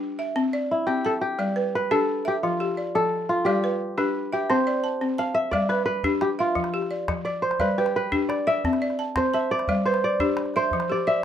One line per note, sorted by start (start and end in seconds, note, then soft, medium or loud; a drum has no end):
0.00 0.12 D4 medium
0.00 0.18 D4 medium
0.00 0.30 F4 medium
0.00 0.57 G4 medium
0.19 0.53 E5 medium
0.36 0.70 C4 medium
0.53 1.05 D5 medium
0.71 2.28 E4 medium
0.87 1.22 C4 medium
0.87 1.21 G4 medium
1.05 1.12 A4 medium
1.05 1.56 A5 medium
1.21 2.27 G4 medium
1.39 1.73 G3 medium
1.39 1.91 D5 medium
1.56 2.08 B4 medium
1.75 2.98 B4 loud
1.91 2.25 D4 medium
1.91 2.42 G4 medium
1.91 2.95 A4 medium
2.25 2.34 G4 medium
2.25 2.59 E5 medium
2.43 2.77 F3 medium
2.43 3.29 F4 medium
2.60 3.12 G4 medium
2.77 3.29 D5 medium
2.95 3.29 F3 medium
2.95 4.27 A4 loud
3.29 4.81 F4 medium
3.45 3.81 G3 medium
3.45 4.33 G4 medium
3.45 3.98 D5 medium
3.64 4.15 B4 medium
3.98 4.32 D4 medium
3.98 4.49 G4 medium
3.98 4.56 B4 medium
4.33 5.74 G4 medium
4.33 4.67 E5 medium
4.50 4.84 C4 medium
4.50 5.69 C5 loud
4.67 5.19 D5 medium
4.84 5.17 A5 medium
5.01 5.36 C4 medium
5.18 5.40 F5 medium
5.18 5.70 A5 medium
5.34 6.38 E5 loud
5.51 5.88 G3 medium
5.51 6.62 D5 medium
5.51 6.05 D5 medium
5.51 calabash thump medium
5.69 5.85 B4 medium
5.69 6.22 B4 medium
5.86 7.09 B4 medium
6.04 6.39 D4 medium
6.04 6.56 G4 medium
6.04 calabash thump medium
6.21 6.28 G4 medium
6.21 calabash click medium
6.30 calabash click soft
6.39 7.92 F4 medium
6.39 6.74 E5 medium
6.39 calabash click soft
6.55 6.91 F3 medium
6.55 calabash thump medium
6.64 calabash click soft
6.74 7.26 G4 medium
6.82 calabash click soft
6.91 7.24 D5 medium
7.08 7.43 F3 medium
7.08 calabash thump medium
7.08 calabash click medium
7.25 8.28 D5 medium
7.25 7.58 D5 medium
7.42 7.67 C5 medium
7.51 calabash click soft
7.59 7.95 G3 medium
7.59 7.96 B4 medium
7.59 8.12 D5 medium
7.59 calabash thump medium
7.78 9.19 G4 medium
7.78 8.30 B4 medium
7.86 calabash click medium
7.96 9.23 B4 medium
8.12 8.47 D4 medium
8.12 8.64 G4 medium
8.12 calabash thump medium
8.29 9.40 D5 medium
8.29 calabash click medium
8.39 calabash click soft
8.47 8.81 E5 medium
8.47 9.34 E5 medium
8.47 calabash click soft
8.64 8.99 C4 medium
8.64 calabash thump medium
8.73 calabash click soft
8.82 9.33 D5 medium
8.90 calabash click soft
8.99 9.32 A5 medium
9.16 9.51 C4 medium
9.16 9.85 C5 medium
9.16 calabash thump medium
9.16 calabash click medium
9.34 10.37 E5 medium
9.34 9.85 A5 medium
9.51 10.04 D5 loud
9.59 calabash click soft
9.68 10.03 G3 medium
9.68 10.20 D5 medium
9.68 calabash thump medium
9.85 10.38 B4 medium
9.85 10.56 C5 medium
9.94 calabash click soft
10.04 10.91 D5 loud
10.20 10.55 D4 medium
10.20 10.72 G4 medium
10.20 calabash thump medium
10.37 calabash click medium
10.46 calabash click soft
10.54 11.24 C5 medium
10.54 10.90 E5 medium
10.54 calabash click soft
10.71 11.07 F3 medium
10.71 calabash thump medium
10.80 calabash click medium
10.90 11.24 G4 medium
10.90 11.24 D5 medium
10.98 calabash click soft
11.07 11.24 D5 medium
11.07 11.24 E5 medium